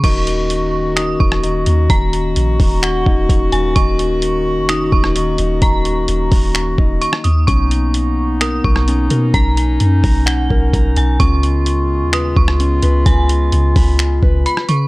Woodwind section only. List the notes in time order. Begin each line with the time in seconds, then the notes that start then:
0.04 D#3 A#3 C#4 F#4
7.48 B3 D#4
9.34 C#4
11.20 C#3 G#3 B3 F4